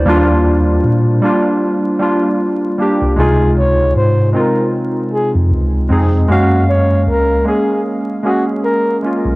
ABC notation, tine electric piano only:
X:1
M:4/4
L:1/16
Q:"Swing 16ths" 1/4=77
K:Db
V:1 name="Tine electric piano" clef=bass
E,,4 B,,2 z8 z C,, | D,,4 A,,2 z4 z F,, D,,2 F,,2 | G,,4 D,,2 z8 z _C,, |]